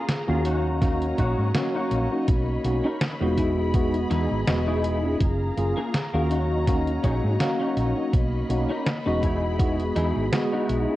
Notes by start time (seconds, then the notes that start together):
Already playing: G#4 F5 A#5
0.09 snare, closed hi-hat
0.28 D#2 A#3 C#4 F4 F#4 G#4 F5
0.45 F#3 C#4 D#4 F#4 C#5 D#5, closed hi-hat
0.81 A#3 C#4 F#4 F5, kick, snare, closed hi-hat
1.02 closed hi-hat
1.18 A#1 C#4 D#4 F#4, kick, closed hi-hat
1.38 G#2
1.54 A#3 C#4 F#4 F5, snare, closed hi-hat
1.74 C#4 D#4 F#4
1.91 A#1, closed hi-hat
2.11 A#3 C#4 D#4 F#4
2.28 B1 A#3 B5, kick, closed hi-hat
2.64 B1 A#3 C#4 D#4 F#4, closed hi-hat
2.84 C#4 D#4 A#4
3.01 snare, closed hi-hat
3.21 E1 G#3 B3 C#4 D#4 F4 F#4 D#5
3.37 D#4 E4 G#4 D#5, kick, closed hi-hat
3.74 G#3 B3 F#4 D#5, kick, closed hi-hat
3.94 closed hi-hat
4.10 E2 D#4 E4 G#4, snare, closed hi-hat
4.31 G#1
4.47 E1 G#3 B3 F#4 D#5, snare, closed hi-hat
4.67 D#4 E4 G#4
4.84 closed hi-hat
5.04 A#3 C#4 F4 G#4
5.21 F#1 F5 A#5, kick, closed hi-hat
5.57 F#1 A#3 C#4 F4 G#4, closed hi-hat
5.77 A#3 F4 G#4
5.94 snare, closed hi-hat
6.14 D#2 A#3 C#4 F4 F#4 G#4 F5
6.30 F#3 C#4 D#4 F#4 C#5 D#5, closed hi-hat
6.67 A#3 C#4 F#4 F5, kick, snare, closed hi-hat
6.87 closed hi-hat
7.03 A#1 C#4 D#4 G#4, kick, closed hi-hat
7.24 G#2
7.39 A#3 C#4 F#4 F5, snare, closed hi-hat
7.60 C#4 D#4 F#4
7.77 A#1, closed hi-hat
7.96 A#3 C#4 D#4 F#4
8.13 B1 A#3 B5, kick, closed hi-hat
8.49 B1 A#3 C#4 D#4 F#4, closed hi-hat
8.70 C#4 D#4 A#4
8.87 snare, closed hi-hat
9.06 E1 G#3 B3 C#4 D#4 F#4 D#5
9.23 D#4 E4 G#4, kick, closed hi-hat
9.59 G#3 B3 F#4 D#5, kick, closed hi-hat
9.80 closed hi-hat
9.96 E2 D#4 E4 G#4, snare, closed hi-hat
10.16 G#1
10.32 G#3 B3 F#4 D#5, snare, closed hi-hat
10.53 D#4 E4 F#4
10.69 B1, closed hi-hat
10.89 A#3 C#4 F4 G#4